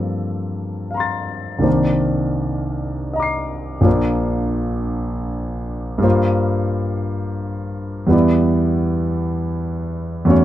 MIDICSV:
0, 0, Header, 1, 2, 480
1, 0, Start_track
1, 0, Key_signature, -2, "minor"
1, 0, Tempo, 758534
1, 1052, Time_signature, 3, 2, 24, 8
1, 1526, Tempo, 728155
1, 3446, Tempo, 714286
1, 4406, Tempo, 688073
1, 5366, Tempo, 726392
1, 6897, End_track
2, 0, Start_track
2, 0, Title_t, "Grand piano"
2, 0, Program_c, 0, 0
2, 0, Control_c, 0, 64, 127
2, 0, Note_on_c, 0, 43, 39
2, 0, Note_on_c, 0, 53, 37
2, 0, Note_on_c, 0, 58, 35
2, 0, Note_on_c, 0, 60, 37
2, 0, Note_on_c, 0, 69, 38
2, 573, Note_on_c, 0, 77, 33
2, 597, Note_on_c, 0, 82, 37
2, 614, Note_on_c, 0, 84, 35
2, 634, Note_on_c, 0, 93, 34
2, 1003, Note_on_c, 0, 36, 43
2, 1008, Note_on_c, 0, 51, 38
2, 1011, Note_off_c, 0, 43, 0
2, 1012, Note_off_c, 0, 58, 0
2, 1015, Note_off_c, 0, 53, 0
2, 1022, Note_on_c, 0, 58, 34
2, 1023, Note_off_c, 0, 60, 0
2, 1027, Note_off_c, 0, 77, 0
2, 1027, Note_on_c, 0, 62, 39
2, 1028, Note_off_c, 0, 69, 0
2, 1035, Note_on_c, 0, 72, 36
2, 1039, Note_off_c, 0, 82, 0
2, 1047, Note_off_c, 0, 84, 0
2, 1057, Note_off_c, 0, 93, 0
2, 1062, Control_c, 0, 64, 0
2, 1148, Control_c, 0, 64, 127
2, 2003, Note_on_c, 0, 75, 33
2, 2019, Note_on_c, 0, 82, 35
2, 2043, Note_on_c, 0, 86, 36
2, 2062, Note_on_c, 0, 96, 39
2, 2426, Note_off_c, 0, 36, 0
2, 2429, Note_off_c, 0, 51, 0
2, 2436, Note_off_c, 0, 58, 0
2, 2439, Note_off_c, 0, 62, 0
2, 2442, Note_off_c, 0, 72, 0
2, 2447, Note_on_c, 0, 34, 49
2, 2448, Note_off_c, 0, 75, 0
2, 2453, Note_on_c, 0, 53, 42
2, 2456, Note_off_c, 0, 82, 0
2, 2463, Note_on_c, 0, 58, 41
2, 2469, Note_off_c, 0, 86, 0
2, 2471, Note_on_c, 0, 62, 39
2, 2478, Note_off_c, 0, 96, 0
2, 2481, Note_on_c, 0, 72, 37
2, 2489, Control_c, 0, 64, 0
2, 2568, Control_c, 0, 64, 127
2, 3888, Note_off_c, 0, 34, 0
2, 3888, Note_on_c, 0, 43, 52
2, 3891, Note_off_c, 0, 53, 0
2, 3896, Note_off_c, 0, 58, 0
2, 3899, Note_on_c, 0, 55, 46
2, 3901, Note_off_c, 0, 62, 0
2, 3905, Note_off_c, 0, 72, 0
2, 3909, Note_on_c, 0, 58, 42
2, 3916, Note_on_c, 0, 65, 47
2, 3925, Note_on_c, 0, 72, 47
2, 3942, Control_c, 0, 64, 0
2, 4035, Control_c, 0, 64, 127
2, 5317, Note_off_c, 0, 43, 0
2, 5319, Note_off_c, 0, 55, 0
2, 5323, Note_on_c, 0, 40, 54
2, 5328, Note_off_c, 0, 58, 0
2, 5329, Note_on_c, 0, 55, 43
2, 5331, Note_off_c, 0, 65, 0
2, 5336, Note_off_c, 0, 72, 0
2, 5340, Note_on_c, 0, 59, 44
2, 5354, Note_on_c, 0, 64, 48
2, 5363, Note_on_c, 0, 74, 45
2, 5377, Control_c, 0, 64, 0
2, 5453, Control_c, 0, 64, 127
2, 6759, Note_off_c, 0, 40, 0
2, 6765, Note_off_c, 0, 55, 0
2, 6769, Note_on_c, 0, 40, 60
2, 6770, Note_off_c, 0, 59, 0
2, 6773, Note_on_c, 0, 57, 44
2, 6777, Note_off_c, 0, 64, 0
2, 6781, Note_off_c, 0, 74, 0
2, 6783, Note_on_c, 0, 61, 45
2, 6794, Note_on_c, 0, 66, 43
2, 6804, Note_on_c, 0, 73, 49
2, 6820, Control_c, 0, 64, 0
2, 6896, Control_c, 0, 64, 127
2, 6897, Note_off_c, 0, 40, 0
2, 6897, Note_off_c, 0, 57, 0
2, 6897, Note_off_c, 0, 61, 0
2, 6897, Note_off_c, 0, 66, 0
2, 6897, Note_off_c, 0, 73, 0
2, 6897, End_track
0, 0, End_of_file